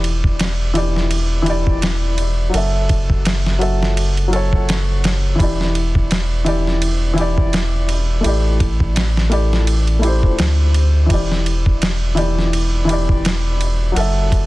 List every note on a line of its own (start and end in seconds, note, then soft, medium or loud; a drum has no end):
0.00 2.51 E1 loud
0.00 0.69 E3 medium
0.00 0.71 E4 medium
0.00 0.72 G4 medium
0.00 0.73 D5 medium
0.04 ride medium
0.24 kick medium
0.39 snare loud
0.39 ride medium
0.74 1.41 E3 medium
0.74 1.42 E4 medium
0.74 1.43 G4 medium
0.74 1.44 D5 medium
0.74 ride medium
0.96 snare soft
1.11 ride medium
1.42 2.48 E3 medium
1.42 2.49 E4 medium
1.46 2.50 G4 medium
1.46 2.51 D5 loud
1.46 ride medium
1.67 kick medium
1.82 snare loud
1.82 ride medium
2.18 ride medium
2.50 3.55 F#3 medium
2.50 3.56 F#4 medium
2.54 5.37 F#1 medium
2.54 3.58 A4 medium
2.54 3.59 E5 medium
2.54 ride medium
2.89 kick medium
2.89 ride medium
3.10 kick medium
3.25 snare loud
3.25 ride medium
3.46 snare soft
3.59 4.26 F#3 medium
3.59 4.28 F#4 medium
3.59 4.29 A4 medium
3.59 4.29 E5 medium
3.59 ride medium
3.83 snare soft
3.97 ride medium
4.17 ride soft
4.28 5.33 F#3 medium
4.28 5.35 F#4 medium
4.33 5.36 A4 medium
4.33 5.37 C#5 medium
4.33 ride medium
4.53 kick medium
4.69 snare loud
4.69 ride medium
5.04 snare loud
5.04 ride medium
5.35 6.41 E3 medium
5.35 6.42 E4 medium
5.40 8.22 E1 loud
5.40 6.43 G4 medium
5.40 6.44 D5 medium
5.40 kick loud
5.40 ride medium
5.61 snare soft
5.75 ride medium
5.95 kick medium
6.11 snare loud
6.11 ride medium
6.44 7.12 E3 medium
6.44 7.14 E4 medium
6.44 7.14 G4 medium
6.44 7.15 D5 medium
6.44 ride medium
6.67 snare soft
6.82 ride medium
7.14 8.19 E3 medium
7.14 8.20 E4 medium
7.18 8.22 G4 medium
7.18 8.23 D5 medium
7.18 ride medium
7.38 kick medium
7.53 snare loud
7.53 ride medium
7.89 ride medium
8.21 9.26 A3 medium
8.21 9.27 E4 medium
8.21 ride medium
8.25 10.23 A1 loud
8.25 9.29 G4 medium
8.25 9.30 D5 medium
8.60 kick medium
8.60 ride medium
8.80 kick medium
8.96 snare loud
8.96 ride medium
9.17 snare soft
9.29 9.98 A3 medium
9.29 9.99 E4 medium
9.29 10.00 G4 medium
9.29 10.00 D5 medium
9.29 ride medium
9.53 snare soft
9.67 ride medium
9.87 ride soft
9.99 11.05 A3 medium
9.99 11.06 E4 medium
10.03 11.07 G4 medium
10.03 11.08 C5 medium
10.03 ride medium
10.23 10.37 E1 medium
10.23 kick medium
10.39 11.08 D2 medium
10.39 snare loud
10.39 ride medium
10.74 ride medium
11.06 12.12 E3 medium
11.06 12.13 E4 medium
11.06 kick loud
11.06 ride medium
11.11 13.93 E1 medium
11.11 12.14 G4 medium
11.11 12.16 D5 medium
11.32 snare soft
11.46 ride medium
11.66 kick medium
11.82 snare loud
11.82 ride medium
12.15 12.83 E3 medium
12.15 12.85 E4 medium
12.15 12.85 G4 medium
12.15 12.86 D5 medium
12.15 ride medium
12.39 snare soft
12.53 ride medium
12.85 13.90 E3 medium
12.85 13.92 E4 medium
12.89 13.93 G4 medium
12.89 13.94 D5 medium
12.89 ride medium
13.09 kick medium
13.25 snare loud
13.25 ride medium
13.61 ride medium
13.92 14.46 F#3 medium
13.92 14.46 F#4 medium
13.96 14.46 F#1 loud
13.96 14.46 A4 medium
13.96 14.46 E5 medium
13.96 ride medium
14.32 kick medium
14.32 ride medium